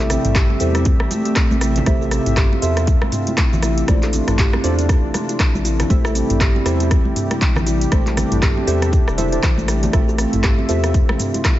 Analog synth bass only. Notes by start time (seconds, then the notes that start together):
Already playing: A1
0.25 A1
0.61 E2
1.01 A1
1.51 A1
1.87 A1
2.27 A1
2.63 E2
3.02 A1
3.53 A1
3.88 A1
4.28 A1
4.64 E2
5.04 A1
5.54 A1
5.90 A1
6.30 A1
6.66 E2
7.06 A1
7.56 A1
7.92 A1
8.32 A1
8.68 E2
9.07 E1
9.58 A1
9.94 A1
10.34 A1
10.70 E2
11.09 A1